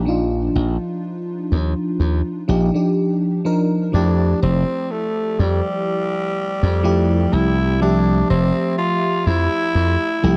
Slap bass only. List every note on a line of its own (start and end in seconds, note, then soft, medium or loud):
0.00 0.48 A#1 medium
0.55 0.76 A#1 medium
1.52 1.73 D#2 medium
2.00 2.21 D#2 medium
2.49 2.70 A#1 medium
3.94 4.33 F2 loud
4.43 4.63 F1 medium
5.39 5.60 F2 medium
6.63 7.25 F2 medium
7.33 8.22 C2 medium
8.30 8.50 F1 medium
9.27 9.47 F2 medium
9.75 9.96 F2 medium
10.24 10.37 C2 medium